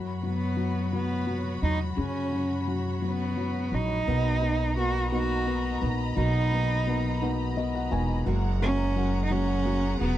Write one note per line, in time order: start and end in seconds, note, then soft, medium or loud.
0.00 1.59 F#2 medium
0.00 0.22 F#3 medium
0.00 4.03 F#4 medium
0.00 4.03 C#5 medium
0.00 4.03 B5 medium
0.23 0.55 F#3 soft
0.23 0.90 B3 medium
0.57 0.91 F#3 soft
0.93 1.25 F#3 medium
0.93 1.60 B3 medium
1.27 1.62 F#3 soft
1.62 1.95 E2 medium
1.62 2.30 F#3 soft
1.62 1.79 D#4 medium
1.97 3.68 F#2 medium
1.97 4.03 C#3 medium
1.97 2.63 C#4 medium
2.32 2.66 F#3 soft
2.68 3.00 F#3 soft
3.02 3.35 F#3 soft
3.02 3.76 B3 medium
3.37 3.71 F#3 medium
3.72 4.05 A#1 medium
3.72 4.06 F#3 soft
3.72 4.78 D#4 medium
4.07 5.78 B1 medium
4.07 4.42 B2 medium
4.07 4.42 F#3 medium
4.07 4.42 A#3 medium
4.07 4.41 B3 medium
4.07 4.41 D#4 medium
4.07 4.40 F#4 medium
4.07 8.23 D#5 medium
4.07 8.23 A#5 medium
4.07 8.23 B5 medium
4.41 4.76 A#3 soft
4.41 4.76 B3 soft
4.41 4.77 D#4 soft
4.41 4.77 F#4 soft
4.77 5.11 F#3 medium
4.77 5.11 A#3 medium
4.77 5.11 B3 soft
4.77 5.11 D#4 medium
4.77 5.10 F#4 medium
4.77 5.11 F#4 medium
5.12 5.47 B2 soft
5.12 5.45 F#3 medium
5.12 5.46 A#3 medium
5.12 5.45 B3 medium
5.12 5.47 D#4 medium
5.12 5.47 F#4 medium
5.12 5.79 F#4 medium
5.47 5.82 F#3 soft
5.47 5.82 A#3 medium
5.47 5.80 B3 soft
5.47 5.81 D#4 soft
5.47 5.80 F#4 medium
5.81 6.15 A#1 medium
5.81 6.16 A#3 soft
5.81 6.51 B3 soft
5.81 6.16 D#4 soft
5.81 6.16 F#4 medium
6.16 7.87 B1 medium
6.16 6.51 B2 medium
6.16 8.22 F#3 medium
6.16 6.52 F#3 medium
6.16 6.52 A#3 medium
6.16 6.51 D#4 medium
6.16 7.18 D#4 medium
6.16 6.50 F#4 medium
6.52 6.86 A#3 soft
6.52 6.86 B3 soft
6.52 6.87 D#4 soft
6.52 6.87 F#4 soft
6.87 7.21 F#3 medium
6.87 7.21 A#3 medium
6.87 7.21 B3 soft
6.87 7.20 D#4 medium
6.87 7.20 F#4 medium
7.22 7.57 B2 medium
7.22 7.55 F#3 medium
7.22 7.55 A#3 medium
7.22 7.56 B3 medium
7.22 7.56 D#4 medium
7.22 7.57 F#4 medium
7.56 7.91 F#3 medium
7.56 7.91 A#3 medium
7.56 7.90 B3 medium
7.56 7.91 D#4 medium
7.56 7.89 F#4 medium
7.56 7.73 D#5 medium
7.75 7.91 F#5 medium
7.91 8.25 E1 medium
7.91 8.25 A#3 soft
7.91 8.25 B3 medium
7.91 8.26 D#4 medium
7.91 8.26 F#4 medium
7.91 8.24 G#5 medium
8.26 9.97 F#1 medium
8.26 8.61 F#2 medium
8.26 8.61 C#3 medium
8.26 8.61 F#3 medium
8.26 8.61 G#3 medium
8.26 8.61 A#3 medium
8.26 8.60 C#4 medium
8.26 8.59 F#4 medium
8.26 10.18 G#4 medium
8.26 10.18 F#5 medium
8.26 10.18 A#5 medium
8.60 8.95 F#3 medium
8.60 8.94 G#3 soft
8.60 8.95 A#3 soft
8.60 8.96 C#4 soft
8.60 9.21 C#4 loud
8.60 8.96 F#4 medium
8.95 9.29 F#3 soft
8.95 9.30 G#3 medium
8.95 9.30 A#3 medium
8.95 9.30 C#4 medium
8.95 9.29 F#4 medium
9.25 9.33 D#4 medium
9.30 9.66 F#2 medium
9.30 9.66 C#3 medium
9.30 9.65 F#3 medium
9.30 9.63 G#3 soft
9.30 9.64 A#3 medium
9.30 9.64 C#4 medium
9.30 10.00 C#4 loud
9.30 9.65 F#4 medium
9.64 9.99 F#3 medium
9.64 10.00 G#3 medium
9.64 10.00 A#3 medium
9.64 9.99 C#4 medium
9.64 9.99 F#4 medium
10.00 10.18 E1 medium
10.00 10.18 F#3 soft
10.00 10.18 G#3 soft
10.00 10.18 B3 medium
10.00 10.18 C#4 soft
10.00 10.18 F#4 medium